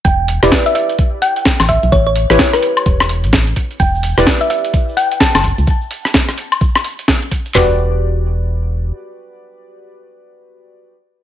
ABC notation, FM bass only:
X:1
M:4/4
L:1/16
Q:"Swing 16ths" 1/4=128
K:Edor
V:1 name="FM bass" clef=bass
E,,,3 E,,, z8 z A,,,2 B,,, | A,,,3 A,,, z4 E,,,3 A,,,3 z2 | E,,,3 E,,, z8 z F,,,2 C,, | z16 |
E,,,12 z4 | z16 |]